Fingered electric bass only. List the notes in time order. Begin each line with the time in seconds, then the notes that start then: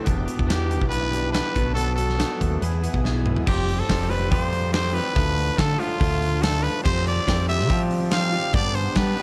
0.07 E1
0.39 E2
0.81 B1
1.56 B1
2.41 D#2
2.62 E2
2.94 B1
3.48 F1
3.90 F1
4.32 F2
5.16 D2
5.59 D3
6.01 D2
6.86 F2
7.28 F2
7.70 F3
8.54 G2
8.97 G3